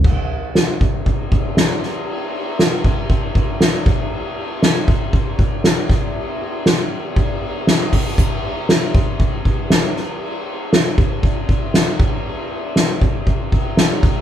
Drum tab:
CC |x-------|--------|--------|--------|
RD |-xxxxxxx|xxxxxxxx|xxxxxxxx|xxxxxxxx|
HH |--------|--------|--------|-------o|
SD |--o---oo|--o---o-|--o---oo|--o---o-|
BD |o--ooo--|---ooo-o|---ooo-o|----o--o|

CC |--------|--------|--------|
RD |xxxxxxxx|xxxxxxxx|xxxxxxxx|
HH |p-------|--------|--------|
SD |--o---oo|--o---o-|--o---oo|
BD |o--ooo--|---ooo-o|---ooo-o|